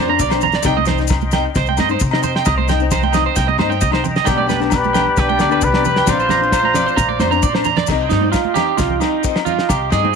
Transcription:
Already playing: F2 D5 A#5 C6
0.08 C4 D4 A#5
0.19 B1 D5, kick, maracas
0.30 C4 D4 C5, snare, low agogo, maracas
0.41 A#5, low conga, maracas
0.52 D5, snare, maracas
0.62 C2 G3 C4 D#4 D#5 G5, kick, snare, low agogo, maracas
0.66 G5
0.77 D#5, high conga
0.85 G3 C4 D#4 C5, snare, high conga, low conga, maracas
0.98 C4 D#4, snare, maracas
1.07 kick, snare, low conga, low agogo, maracas
1.21 high conga, maracas
1.31 G3 C4 D#4 G5, snare, low conga, low agogo, maracas
1.55 C2 C5, kick, snare, maracas
1.66 G5, high conga, maracas
1.77 G2 G3 C4 D#5, muted steel-string acoustic guitar stroke, snare, high conga, low agogo, maracas
1.89 C4 D#4 C5, maracas
2.00 C3, kick, maracas
2.11 C4 D#4 D#5, snare, low agogo
2.23 C5, low conga, maracas
2.36 G5, snare
2.45 C2 D#5 A#5, kick, snare, low agogo, maracas
2.58 C5, high conga
2.67 G3 D#4 G5, muted steel-string acoustic guitar stroke, snare, high conga, low conga, maracas
2.80 C4 D#4, maracas
2.91 C5, kick, snare, low conga, low agogo, maracas
3.03 G5, high conga, maracas
3.12 G3 C4 D#4 D#5, snare, low conga, low agogo, maracas
3.26 C5
3.36 C2 G5, kick, snare, maracas
3.48 D#5, high conga
3.58 G2 G3 C4 D#4 C5, snare, high conga, low agogo
3.69 C4 D#4 G5, maracas
3.81 C2 D#5, kick, maracas
3.91 C4 D#4 C5, snare, low agogo
4.04 muted clean electric guitar stroke, low conga, maracas
4.16 D#5, snare, maracas
4.24 B1 G3 B3 D4 G4 D5 G5 B5, kick, snare, low agogo, maracas
4.30 D4
4.37 D5, high conga
4.47 G3 B3 D4 B4, snare, high conga, low conga, maracas
4.60 B3 D4, snare, maracas
4.70 kick, snare, low conga, low agogo, maracas
4.74 G4 B4
4.84 high conga, maracas
4.93 G3 B3 D4 G5, snare, low conga, low agogo, maracas
5.17 B1 G4 B4, kick, snare, maracas
5.22 D4
5.29 G5, high conga, maracas
5.38 D2 G3 B3 D4 D5, snare, high conga, low agogo, maracas
5.49 B3 D4 B4, maracas
5.61 C2 B4, kick, maracas
5.66 G4
5.72 B3 D4 D5, snare, low agogo
5.85 B4, low conga, maracas
5.96 G5, snare, maracas
6.06 A#1 F3 C4 D4 D5 A#5 C6, kick, snare, low agogo, maracas
6.10 F4 C5
6.20 C5, maracas
6.29 F3 C4 D4 A#5, snare, high conga, low conga, maracas
6.41 C4 D4, maracas
6.52 C5, kick, snare, low agogo, maracas
6.63 A#5, high conga
6.74 F3 C4 D4 D5, snare, low conga, low agogo, maracas
6.86 C5, maracas
6.96 A#1 A#5, kick, snare, maracas
7.09 D5, high conga
7.19 F2 F3 C4 D4 C5, snare, high conga, low agogo, maracas
7.31 C4 D4 A#5, maracas
7.42 A#2 D5, kick, maracas
7.54 C4 D4 C5, snare, high conga, low agogo
7.64 A#5, low conga, maracas
7.76 D5, snare, low conga, maracas
7.87 C2 G3 C4 D#4 D#5 G5 C6, kick, snare, crash, low agogo, maracas
8.09 G2 G3 C4 D#4, snare, maracas
8.21 C4 D#4, high conga
8.32 F4, kick, snare, low agogo, maracas
8.45 high conga
8.54 G3 C4 D#4 G4, snare, low conga, low agogo, maracas
8.77 C2 F4, kick, snare, high conga, maracas
8.90 low conga
9.00 G3 C4 D#4, snare, low agogo, maracas
9.23 G3 C4 D#4, kick, maracas
9.36 snare, low agogo
9.45 G3 C4 F4, low conga, maracas
9.59 snare
9.69 C2 G4, kick, snare, low agogo, maracas
9.90 G2 G3 C4 D#4 G#4, snare, maracas
10.03 C4 D#4, high conga

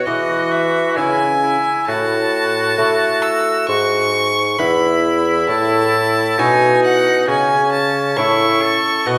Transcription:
Already playing: F#4
0.06 E3 G#3 D#5
0.51 E5
0.96 C#3 G#3 E4 B4 G#5
1.43 E4
1.87 A2 F#4 A5
2.78 A3 E4 C#5
3.22 E6
3.68 G#2 C#6
4.58 E2 E4 B4 B5
5.48 A2 A5
6.38 B2 C#4 D#4 E4 C#5 G#5
6.84 F#5
7.28 C#3 C#4 G#5
7.72 A5
8.16 A2 C#4 E4 C#5 C#6
8.62 A4
9.06 B2 F#4 D#5

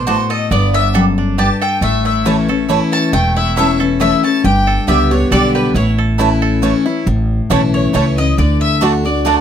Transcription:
Already playing: A1 D4 A4
0.06 A2 A3 F#4 C5 D5 A5
0.30 A4 D#5
0.51 G1 G2 B3 D5
0.74 D4 E5
0.94 F#2 B3 G4 A4 D5 G5
1.18 D4
1.38 G2 B3 G4 D5 G5 A5
1.61 A4 G5
1.81 A1 A2 A3 E5
2.05 E4 E5
2.25 E3 A3 C#4 E4 C#5 A5
2.48 C#4 E4 A4
2.69 E3 A3 C#4 E4 C#5 A5
2.92 C#4 A5
3.13 E1 E2 A3 G5
3.36 E4 E5
3.56 E3 A3 C#4 E4 C#5 E5 A5
3.80 C#4 E4 A4
4.00 E3 A3 C#4 E4 C#5 E5 A5
4.24 C#4 E4 A5
4.44 G1 G2 G4 G5
4.67 A4
4.87 C#2 D3 G3 B3 G4 D5 E5 G5
5.11 B3 D4 G4 C#5
5.31 B1 D3 G3 B3 G4 A4 D5 G5
5.54 G4 B4
5.74 A1 A2 E4 C#5
5.98 A4
6.18 E3 A3 C#4 E4 C#5 A5
6.42 A4
6.62 E3 A3 C#4 E4 C#5 A5
6.86 C#4 E4
7.06 A1 A2
7.50 B1 E3 A3 C#4 E4 C#5 A5
7.73 C#5
7.93 C#2 E3 A3 C#4 E4 C#5 A5
8.17 C#4 E4 D#5
8.38 D2 D3 D5
8.61 E5
8.81 D3 A3 D4 F#4 D5 A5
9.04 D4 F#4 D5
9.25 D3 A3 D4 F#4 D5 A5

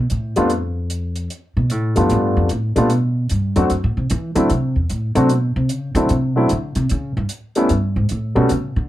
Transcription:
0.10 A2, closed hi-hat
0.36 F2 G3 A3 B3 D4 F4, closed hi-hat
0.50 closed hi-hat
0.90 closed hi-hat
1.16 closed hi-hat
1.30 closed hi-hat
1.57 B2
1.70 A2, closed hi-hat
1.96 F#2 G3 A3 B3 D4 F4, closed hi-hat
2.10 G2, closed hi-hat
2.37 F2
2.49 A2, closed hi-hat
2.76 A#2 G3 A3 B3 D4 F4, closed hi-hat
2.90 B2, closed hi-hat
3.29 G2, closed hi-hat
3.56 F2 F#3 A3 C4 D4 F#4, closed hi-hat
3.70 F#2, closed hi-hat
3.84 A2
3.97 C3
4.10 E3, closed hi-hat
4.35 D3 F#3 A3 C4 D4 E4, closed hi-hat
4.50 C3, closed hi-hat
4.76 E2
4.90 A2, closed hi-hat
5.15 C3 F#3 A3 C4 D4 F#4, closed hi-hat
5.29 B2, closed hi-hat
5.56 C3
5.69 C#3, closed hi-hat
5.95 D3 F#3 A3 C4 D4 E4, closed hi-hat
6.09 C3, closed hi-hat
6.36 B2 F#3 A3 C4 D4 E4
6.49 D3, closed hi-hat
6.75 C3, closed hi-hat
6.89 C#3, closed hi-hat
7.17 G2
7.29 closed hi-hat
7.55 G3 A3 B3 C#4 E4, closed hi-hat
7.69 G2, closed hi-hat
7.96 G#2
8.09 A2, closed hi-hat
8.35 B2 G3 A3 B3 C#4 F#4
8.49 C#3, closed hi-hat
8.76 D3

